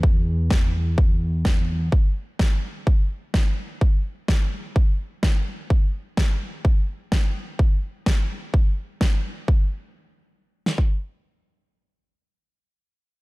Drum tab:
SD |----o-------o---|----o-------o---|----o-------o---|----o-------o---|
BD |o---o---o---o---|o---o---o---o---|o---o---o---o---|o---o---o---o---|

SD |----o-------o---|----------o-----|----------------|
BD |o---o---o---o---|o----------o----|----------------|